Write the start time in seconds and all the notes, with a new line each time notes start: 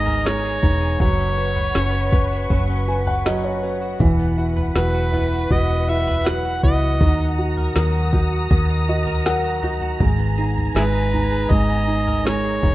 Already playing: G#1 G#2 G#3 B3 D#4 G#4 D#5 G#5 A#5
0.06 A#4, floor tom, shaker
0.25 G#3 C#5, snare, shaker
0.44 G#4, shaker
0.62 E1 B3 D#4, kick, shaker
0.81 G#4, shaker
1.00 F#1 F#3 B4 C#5 F#5 C#6, kick, floor tom, shaker
1.18 C#4, shaker
1.37 F#4 B4, shaker
1.56 B4, floor tom, shaker
1.74 F#1 C#4, snare, shaker
1.94 F#4, shaker
2.12 C#4 B4, kick, floor tom, shaker
2.31 F#4, shaker
2.50 F#1 F#3 C#4, kick, floor tom, shaker
2.69 C#4, shaker
2.88 F#4 B4 G#5, shaker
3.07 B4 F#5, floor tom, shaker
3.26 F#3 C#4 D#5, snare, shaker
3.44 F#4 C#5, shaker
3.63 C#4 B4, shaker
3.82 F#4, shaker
4.00 E1 E3 B4, kick, floor tom, shaker
4.19 B3, shaker
4.38 E4 F#4, shaker
4.57 B4, floor tom, shaker
4.75 E1 F#3 F#4 B4, snare, shaker
4.94 F#4, shaker
5.12 B3 E4, floor tom, shaker
5.32 F#4, shaker
5.50 E1 E3 F#4 D#5, kick, floor tom, shaker
5.70 B3, shaker
5.89 E4 F#4 E5, shaker
6.07 B4, floor tom, shaker
6.26 F#3 F#4 F#5, snare, shaker
6.45 F#4, shaker
6.63 C#2 B3 E4 D#5, kick, shaker
6.83 F#4, shaker
7.00 D#2 D#3 A#5 D#6, kick, floor tom, shaker
7.20 D#4, shaker
7.39 F#4, shaker
7.57 A#4, floor tom, shaker
7.76 D#2 F#3 A#4, snare, shaker
7.95 F#4, shaker
8.13 D#4 F#4, kick, floor tom, shaker
8.32 F#4, shaker
8.50 D#2 D#3 A#4, kick, floor tom, shaker
8.69 D#4, shaker
8.87 F#4 D#5, shaker
9.06 A#4, floor tom, shaker
9.25 F#3 A#4 F#5, snare, shaker
9.45 F#4, shaker
9.62 D#4 F#4, floor tom, shaker
9.81 F#4, floor tom, shaker
10.00 G#1 G#2 G#3 G#5, kick, floor tom, shaker
10.19 B3, shaker
10.38 D#4 G#4, shaker
10.57 floor tom, shaker
10.75 G#1 G#3 E4 G#4 B4, snare, shaker
10.94 G#4, shaker
11.13 B3 D#4, floor tom, shaker
11.32 G#4, shaker
11.50 G#1 G#2 G#3 D#5, kick, floor tom, shaker
11.70 B3, shaker
11.87 D#4 G#4, shaker
12.07 A#4, floor tom, shaker
12.25 G#3 C#5, snare, shaker
12.44 G#4, shaker
12.62 E1 B3 D#4, kick, shaker